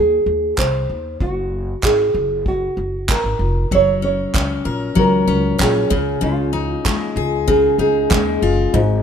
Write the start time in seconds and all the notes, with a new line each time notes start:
Already playing: D#2 G#4
0.26 D#2
0.58 C2 C5, kick, clap
0.90 D#2
1.20 F#1 F#4, kick
1.83 G#1 G#4, kick, clap
2.14 F#1
2.46 F#4, kick
2.77 F#1
3.09 A#4, kick, clap
3.24 G#1
3.39 F1
3.71 F#1 F#3 C#5, kick
4.02 C#4 C#5
4.34 C#2 C#4, kick, clap
4.65 A#1 A#4
4.95 C#2 F#3 A#4, kick
5.27 C#2 C#4
5.58 A#1 C#4, kick, clap
5.63 G#4
5.90 C#2 C#3, kick
6.21 C#2 C#3 F4
6.53 D#4
6.85 D#2 G#3, kick, clap
7.16 C#2 G#4
7.48 C#3 G#4, kick
7.78 C#2 D#4 G#4
8.10 D#2 G#3, kick, clap
8.42 F#1 F4
8.73 G#1 G#2 D#4, kick